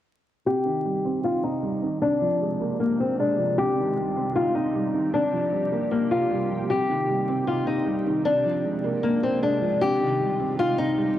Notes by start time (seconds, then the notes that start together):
0.46 C3 G4
0.65 D#3
0.85 G3
1.05 C4
1.24 D#4 F4
1.43 C4 D#4
1.63 G3
1.83 D#3
2.02 C3 D4
2.22 F3
2.41 G#3
2.60 A#3
2.80 A#3 D4
2.99 A#3 C4
3.19 G#3 D4
3.38 F3
3.58 C3 G4
3.77 D#3
3.96 G3
4.16 C4
4.36 D#4 F4
4.55 C4 D#4
4.75 G3
4.94 D#3
5.14 C3 D4
5.33 F3
5.52 G3
5.72 A#3
5.91 A#3 D4
6.11 A#3 F4
6.31 G3
6.50 F3
6.70 C3 G4
6.89 D#3
7.08 G3
7.28 C4
7.47 D#4 F4
7.67 C4 D#4
7.86 G3
8.06 D#3
8.25 C3 D4
8.45 F3
8.64 G#3
8.84 A#3
9.03 A#3 D4
9.23 A#3 C4
9.42 G#3 D4
9.62 F3
9.81 C3 G4
10.00 D#3
10.20 G3
10.40 C4
10.59 D#4 F4
10.78 C4 D#4
10.98 G3